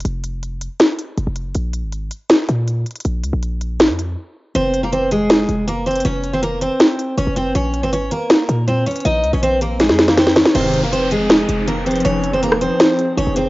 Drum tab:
CC |--------------------------------|--------------------------------|--------------------------------|--------------------------------|
HH |x---x---x---x---x---x---x---x---|x---x---x---x---x---x---x---xxxx|x---x---x---x---x---x-----------|x---x---x---x---x---x---x---xxxx|
SD |----------------o---------------|----------------o---------------|----------------o---------------|----------------o---------------|

CC |--------------------------------|--------------------------------|--------------------------------|x-------------------------------|
HH |x---x---x---x---x---x---x---x---|x---x---x---x---x---x---x---xxxx|x---x---x---x---x---x---x---o---|x---x---x---x---x---x---x---xxxx|
SD |----------------o---------------|----------------o---------------|----------------o-o-o-o-o-o-o-o-|----------------o---------------|

CC |--------------------------------|
HH |x---x---x---x---x---x---x---x---|
SD |----------r-----o---------------|